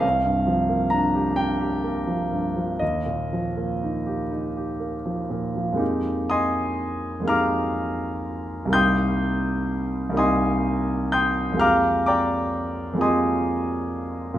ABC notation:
X:1
M:6/8
L:1/16
Q:3/8=42
K:Fdor
V:1 name="Grand piano"
f4 b2 g6 | e6 z6 | z2 [eac'e']4 [fbd'f']6 | [gc'e'g']6 [eac'e']4 [gc'e'g']2 |
[fbd'f']2 [dgbd']4 [eac'e']6 |]
V:2 name="Grand piano"
C,, G,, F, B, D G D G B, F, G,, F, | E,, B,, F, B, E G E G B, F, B,, F, | [F,,A,B,EG]6 [F,,A,B,EG]6 | [C,,G,B,EG]6 [C,,G,B,EG]6 |
[F,,A,B,FG]6 [F,,A,B,FG]6 |]